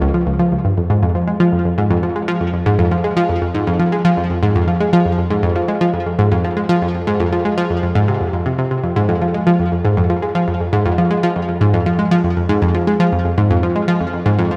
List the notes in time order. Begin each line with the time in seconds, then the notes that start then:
0.02 C#2
0.14 F3
0.27 C#2
0.39 F3
0.52 C#2
0.65 G2
0.78 F2
0.90 G#2
1.03 F2
1.15 F3
1.28 G#3
1.40 F3
1.53 F2
1.65 F2
1.78 G#2
1.90 F2
2.03 F3
2.16 G#3
2.28 F3
2.41 F2
2.53 F2
2.66 G#2
2.79 F2
2.91 F3
3.04 G#3
3.17 F3
3.29 F2
3.42 F2
3.55 G#2
3.67 F2
3.80 F3
3.92 G#3
4.05 F3
4.17 F2
4.30 F2
4.43 G#2
4.55 F2
4.68 F3
4.80 G#3
4.93 F3
5.06 F2
5.18 F2
5.30 G#2
5.43 F2
5.56 F3
5.68 G#3
5.81 F3
5.94 F2
6.06 F2
6.19 G#2
6.32 F2
6.44 F3
6.57 G#3
6.69 F3
6.82 F2
6.95 F2
7.07 G#2
7.20 F2
7.33 F3
7.45 G#3
7.58 F3
7.70 F2
7.83 F2
7.95 G#2
8.08 C3
8.21 F2
8.33 F2
8.46 C3
8.58 C3
8.71 C3
8.84 F2
8.96 G#2
9.09 F2
9.22 F3
9.34 G#3
9.47 F3
9.59 F2
9.72 F2
9.85 G#2
9.97 F2
10.10 F3
10.22 G#3
10.35 F3
10.48 F2
10.60 F2
10.73 G#2
10.86 F2
10.98 F3
11.11 G#3
11.23 F3
11.36 F2
11.48 F2
11.61 G#2
11.74 F2
11.86 F3
11.99 G#3
12.11 F3
12.24 F2
12.37 F2
12.49 G#2
12.62 F2
12.75 F3
12.87 G#3
13.00 F3
13.12 F2
13.25 F2
13.38 G#2
13.51 F2
13.63 F3
13.76 G#3
13.88 F3
14.01 F2
14.13 F2
14.26 G#2
14.39 F2
14.51 F3